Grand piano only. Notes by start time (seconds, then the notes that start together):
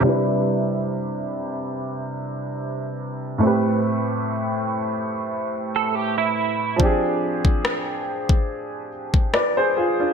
0.00 C3 G3
0.05 D4 E4
0.09 B4
3.38 A2 A3
3.43 C4 G4
3.47 B4
6.76 F3 C4
6.81 D4 G4
6.85 G#4
9.34 B4 D5
9.57 G#4 C5
9.77 F4 G#4
9.99 D4 F4